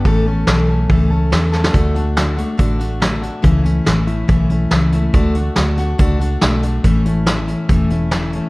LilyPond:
<<
  \new Staff \with { instrumentName = "Steel-string acoustic guitar" } { \time 4/4 \key d \major \tempo 4 = 141 <a, e a cis' a'>8 <a cis' a'>8 <e a cis' a'>8 <a cis' a'>8 <a, e a cis' a'>8 <a cis' a'>8 <e a cis' a'>8 <a cis' a'>8 | <d a d' fis'>8 <a d' fis'>8 <d a d' fis'>8 <a d' fis'>8 <d a d' fis'>8 <a d' fis'>8 <d a d' fis'>8 <a d' fis'>8 | <cis e a cis' e'>8 <a cis' e'>8 <e a cis' e'>8 <a cis' e'>8 <cis e a cis' e'>8 <a cis' e'>8 <e a cis' e'>8 <a cis' e'>8 | <d a d' fis'>8 <a d' fis'>8 <d a d' fis'>8 <a d' fis'>8 <d a d' fis'>8 <a d' fis'>8 <d a d' fis'>8 <a d' fis'>8 |
<a, e a cis' e'>8 <a cis' e'>8 <e a cis' e'>8 <a cis' e'>8 <a, e a cis' e'>8 <a cis' e'>8 <e a cis' e'>8 <a cis' e'>8 | }
  \new Staff \with { instrumentName = "Fingered electric bass" } { \clef bass \time 4/4 \key d \major a,,4 b,,4 cis,4 e,4 | d,2 a,,2 | cis,4 a,,4 b,,4 cis,4 | d,4 d,4 cis,4 b,,4 |
a,,2 e,,2 | }
  \new DrumStaff \with { instrumentName = "Drums" } \drummode { \time 4/4 <hho bd>4 <hho sn>4 <hho bd>4 <hho sn>8 sn16 sn16 | <hh bd>8 hh8 <hh sn>8 hh8 <hh bd>8 hh8 <hh sn>8 hh8 | <hh bd>8 hh8 <hh sn>8 hh8 <hh bd>8 hh8 <hh sn>8 hh8 | <hh bd>8 hh8 <hh sn>8 hh8 <hh bd>8 hh8 <hh sn>8 hh8 |
<hh bd>8 hh8 <hh sn>8 hh8 <hh bd>8 hh8 <hh sn>8 hh8 | }
>>